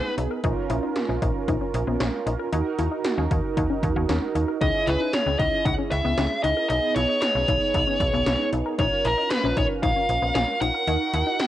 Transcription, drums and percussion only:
0.18 closed hi-hat medium
0.44 kick loud
0.44 closed hi-hat medium
0.70 closed hi-hat medium
0.96 snare loud
0.96 closed hi-hat medium
1.22 kick medium
1.22 closed hi-hat medium
1.48 kick medium
1.48 closed hi-hat medium
1.74 closed hi-hat medium
2.00 snare loud
2.00 closed hi-hat medium
2.27 closed hi-hat medium
2.53 closed hi-hat medium
2.79 closed hi-hat medium
3.04 snare loud
3.04 closed hi-hat medium
3.31 kick medium
3.31 closed hi-hat medium
3.57 kick medium
3.57 closed hi-hat medium
3.83 kick medium
3.83 closed hi-hat medium
4.09 snare loud
4.09 closed hi-hat medium
4.35 closed hi-hat medium
4.61 kick loud
4.61 closed hi-hat medium
4.87 closed hi-hat medium
5.13 snare loud
5.13 closed hi-hat medium
5.40 kick medium
5.40 closed hi-hat medium
5.66 kick medium
5.66 closed hi-hat medium
5.92 closed hi-hat medium
6.18 snare loud
6.18 closed hi-hat medium
6.44 closed hi-hat medium
6.70 closed hi-hat medium
6.96 closed hi-hat medium
7.22 snare loud
7.22 closed hi-hat medium
7.48 kick medium
7.48 closed hi-hat medium
7.74 kick medium
7.74 closed hi-hat medium
8.00 kick medium
8.00 closed hi-hat medium
8.26 snare loud
8.26 closed hi-hat medium
8.53 closed hi-hat medium
8.79 kick loud
8.79 closed hi-hat medium
9.05 closed hi-hat medium
9.30 snare loud
9.30 closed hi-hat medium
9.57 kick medium
9.57 closed hi-hat medium
9.83 kick medium
9.83 closed hi-hat medium
10.09 closed hi-hat medium
10.35 snare loud
10.35 closed hi-hat medium
10.62 closed hi-hat medium
10.87 closed hi-hat medium
11.14 closed hi-hat medium
11.39 snare loud
11.39 closed hi-hat medium

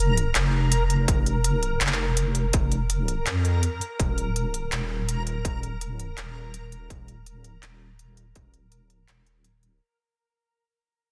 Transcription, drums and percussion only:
0.17 closed hi-hat soft
0.35 clap loud
0.35 closed hi-hat medium
0.72 closed hi-hat medium
0.90 closed hi-hat soft
1.08 kick loud
1.08 closed hi-hat medium
1.26 closed hi-hat soft
1.44 closed hi-hat medium
1.63 closed hi-hat soft
1.81 clap loud
1.81 closed hi-hat medium
1.87 clap loud
1.93 clap medium
2.17 closed hi-hat medium
2.35 closed hi-hat soft
2.53 kick loud
2.53 closed hi-hat medium
2.72 closed hi-hat soft
2.90 closed hi-hat medium
3.08 closed hi-hat soft
3.26 clap loud
3.26 closed hi-hat medium
3.45 closed hi-hat soft
3.63 closed hi-hat medium
3.81 closed hi-hat soft
4.00 kick loud
4.00 closed hi-hat medium
4.18 closed hi-hat soft
4.36 closed hi-hat medium
4.54 closed hi-hat soft
4.72 clap loud
4.72 closed hi-hat medium
5.09 closed hi-hat medium
5.27 closed hi-hat soft
5.45 kick loud
5.45 closed hi-hat medium
5.63 closed hi-hat soft
5.81 closed hi-hat medium
6.00 closed hi-hat soft
6.18 clap loud
6.18 closed hi-hat medium
6.54 closed hi-hat medium
6.72 closed hi-hat soft
6.90 kick loud
6.90 closed hi-hat medium
7.08 closed hi-hat soft
7.26 closed hi-hat medium
7.44 closed hi-hat soft
7.63 clap loud
7.63 closed hi-hat medium
7.99 closed hi-hat medium
8.17 closed hi-hat soft
8.35 kick loud
8.35 closed hi-hat medium
8.54 closed hi-hat soft
8.72 closed hi-hat medium
8.90 closed hi-hat soft
9.08 clap loud
9.08 closed hi-hat medium
9.27 closed hi-hat soft
9.44 closed hi-hat medium
9.63 closed hi-hat soft

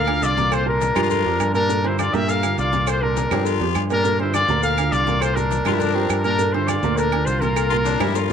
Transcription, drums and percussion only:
0.07 low agogo loud
0.07 claves medium
0.22 cowbell medium
0.22 low timbale medium
0.22 maracas medium
0.37 cowbell medium
0.37 high conga medium
0.37 low agogo medium
0.37 maracas soft
0.52 cowbell loud
0.52 high conga soft
0.52 low agogo loud
0.52 claves medium
0.52 maracas medium
0.67 high conga soft
0.81 cowbell medium
0.81 high conga loud
0.81 low agogo medium
0.81 maracas medium
0.96 cowbell medium
0.96 high conga soft
0.96 low conga medium
0.96 low agogo loud
0.96 claves medium
0.96 maracas soft
1.10 cowbell loud
1.10 high conga soft
1.10 low conga medium
1.10 low agogo medium
1.10 maracas medium
1.25 high conga soft
1.40 cowbell medium
1.40 high conga soft
1.40 low timbale medium
1.40 low agogo loud
1.40 claves medium
1.40 maracas medium
1.55 low agogo medium
1.55 maracas soft
1.69 cowbell loud
1.69 high conga soft
1.69 maracas medium
1.84 high conga soft
1.84 low agogo medium
1.99 cowbell medium
1.99 high conga loud
1.99 low agogo loud
1.99 claves medium
1.99 maracas medium
2.13 cowbell medium
2.13 maracas soft
2.28 cowbell loud
2.28 high conga soft
2.28 low agogo medium
2.28 maracas medium
2.43 low agogo loud
2.43 claves medium
2.43 maracas medium
2.58 cowbell medium
2.58 low timbale medium
2.58 maracas medium
2.73 cowbell medium
2.73 high conga medium
2.73 low agogo medium
2.73 maracas soft
2.87 cowbell loud
2.87 high conga soft
2.87 low agogo loud
2.87 claves medium
2.87 maracas medium
3.16 cowbell medium
3.16 high conga loud
3.16 high timbale medium
3.16 low agogo medium
3.16 maracas medium
3.31 cowbell medium
3.31 high conga soft
3.31 low conga medium
3.31 high timbale loud
3.31 low agogo loud
3.31 claves medium
3.31 maracas soft
3.45 cowbell loud
3.45 high conga soft
3.45 low timbale medium
3.45 low agogo medium
3.45 maracas medium
3.61 low timbale loud
3.75 cowbell medium
3.75 high conga soft
3.75 low timbale medium
3.75 low agogo loud
3.75 claves medium
3.75 maracas medium
3.90 low timbale medium
3.90 low agogo medium
3.90 maracas soft
4.04 cowbell loud
4.04 high conga soft
4.04 maracas medium
4.19 high conga soft
4.19 low agogo medium
4.33 cowbell medium
4.33 high conga loud
4.33 low agogo loud
4.33 claves medium
4.33 maracas medium
4.48 cowbell medium
4.48 maracas soft
4.63 cowbell loud
4.63 high conga soft
4.63 low agogo medium
4.63 maracas medium
4.78 low agogo loud
4.78 claves medium
4.78 maracas medium
4.92 cowbell medium
4.92 low timbale medium
4.92 maracas medium
5.07 cowbell medium
5.07 high conga medium
5.07 low agogo medium
5.07 maracas soft
5.21 cowbell loud
5.21 high conga soft
5.21 low agogo loud
5.21 claves medium
5.21 maracas medium
5.37 maracas medium
5.51 cowbell medium
5.51 high conga loud
5.51 low agogo medium
5.51 maracas medium
5.65 cowbell medium
5.65 high conga soft
5.65 low conga medium
5.65 low agogo loud
5.65 claves medium
5.65 maracas soft
5.80 cowbell loud
5.80 high conga soft
5.80 low conga medium
5.80 low agogo medium
5.80 maracas medium
6.09 cowbell medium
6.09 high conga soft
6.09 low agogo loud
6.09 claves medium
6.09 maracas medium
6.24 low agogo medium
6.24 maracas soft
6.39 cowbell loud
6.39 maracas medium
6.54 high conga soft
6.54 low agogo medium
6.68 cowbell medium
6.68 high conga loud
6.68 low agogo loud
6.68 claves medium
6.68 maracas medium
6.82 cowbell medium
6.82 high conga soft
6.82 maracas soft
6.97 cowbell loud
6.97 high conga soft
6.97 low agogo medium
6.97 maracas medium
7.12 high conga soft
7.12 low agogo loud
7.12 claves medium
7.27 cowbell medium
7.27 maracas medium
7.41 cowbell medium
7.41 high conga medium
7.41 low agogo medium
7.41 maracas soft
7.56 cowbell loud
7.56 high conga soft
7.56 low agogo loud
7.56 claves medium
7.56 maracas medium
7.71 high conga soft
7.85 cowbell medium
7.85 high conga loud
7.85 high timbale medium
7.85 low agogo medium
7.85 maracas medium
8.00 cowbell medium
8.00 high bongo loud
8.00 high conga soft
8.00 low conga medium
8.00 high timbale loud
8.00 low agogo loud
8.00 claves medium
8.00 maracas soft
8.15 cowbell loud
8.15 high bongo medium
8.15 high conga soft
8.15 low timbale medium
8.15 low agogo medium
8.15 maracas medium
8.29 low timbale medium

